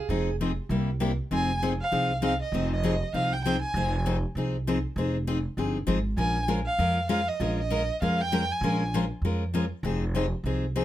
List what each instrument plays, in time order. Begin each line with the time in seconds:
Already playing: steel-string acoustic guitar G#4
0.09 upright bass F1, steel-string acoustic guitar F3 C4 D#4 G#4
0.41 steel-string acoustic guitar F3 C4 D#4 G#4
0.69 upright bass C2, steel-string acoustic guitar C3 G3 A#3 E4 G4
1.00 steel-string acoustic guitar C3 G3 A#3 E4 G4
1.31 upright bass F1, steel-string acoustic guitar F3 C4 D#4 G#4, violin G#5
1.62 steel-string acoustic guitar F3 C4 D#4 G#4
1.82 violin F5
1.92 upright bass C2, steel-string acoustic guitar F3 C4 D#4 G#4
2.22 steel-string acoustic guitar F3 C4 D#4 G#4, violin F5
2.42 violin D#5
2.52 upright bass F1, steel-string acoustic guitar F3 C4 D#4 G#4
2.73 violin D#5
2.83 steel-string acoustic guitar F3 C4 D#4 G#4
3.13 upright bass C2, steel-string acoustic guitar F3 C4 D#4 G#4, violin F5
3.33 violin G5
3.44 steel-string acoustic guitar F3 C4 D#4 G#4, violin G5
3.62 violin G#5
3.74 upright bass F1, steel-string acoustic guitar F3 C4 D#4 G#4
4.06 steel-string acoustic guitar F3 C4 D#4 G#4
4.35 upright bass C2, steel-string acoustic guitar F3 C4 D#4 G#4
4.67 steel-string acoustic guitar F3 C4 D#4 G#4
4.96 upright bass F1, steel-string acoustic guitar F3 C4 D#4 G#4
5.27 steel-string acoustic guitar F3 C4 D#4 G#4
5.57 upright bass G1, steel-string acoustic guitar F3 C4 D#4 G#4
5.87 upright bass G#1, steel-string acoustic guitar F3 C4 D#4 G#4
6.17 upright bass A#1, steel-string acoustic guitar F3 G#3 C#4 F4 A#4, violin G#5
6.48 steel-string acoustic guitar F3 G#3 C#4 F4 A#4
6.66 violin F5
6.79 upright bass F2, steel-string acoustic guitar F3 G#3 C#4 F4 A#4
7.09 steel-string acoustic guitar F3 G#3 C#4 F4 A#4, violin F5
7.28 violin D#5
7.40 upright bass A#1, steel-string acoustic guitar F3 G#3 C#4 F4 A#4
7.60 violin D#5
7.70 steel-string acoustic guitar F3 G#3 C#4 F4 A#4
8.02 upright bass F2, steel-string acoustic guitar F3 G#3 C#4 F4 A#4, violin F5
8.21 violin G5
8.32 steel-string acoustic guitar F3 G#3 C#4 F4 A#4
8.51 violin G#5
8.61 upright bass A#1, steel-string acoustic guitar F3 G#3 C#4 F4 A#4
8.94 steel-string acoustic guitar F3 G#3 C#4 F4 A#4
9.22 upright bass F2, steel-string acoustic guitar F3 G#3 C#4 F4 A#4
9.54 steel-string acoustic guitar F3 G#3 C#4 F4 A#4
9.83 upright bass F1, steel-string acoustic guitar F3 C4 D#4 G#4
10.15 steel-string acoustic guitar F3 C4 D#4 G#4
10.44 upright bass C2, steel-string acoustic guitar F3 C4 D#4 G#4
10.76 steel-string acoustic guitar F3 C4 D#4 G#4